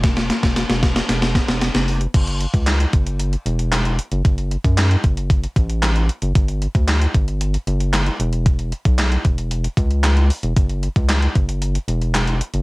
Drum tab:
CC |----------------|x---------------|----------------|----------------|
HH |xxxxxxxxxxxxxxox|xxxxxxxxxxxxxxxx|xxxxxxxxxxxxxxxx|xxxxxxxxxxxxxxxx|
CP |----------------|----x-------x---|----x-------x---|----x-------x---|
SD |oooooooooooooo--|----o-------o---|----o-------o---|----o-------o---|
BD |o--o--o---o-----|o--o--o---------|o--o--o-o-o-----|o--o--o---------|

CC |----------------|----------------|
HH |xxxxxxxxxxxxxxox|xxxxxxxxxxxxxxxx|
CP |----x-------x---|----x-------x---|
SD |----o-------o---|----o-------o---|
BD |o--o--o---o-----|o--o--o---------|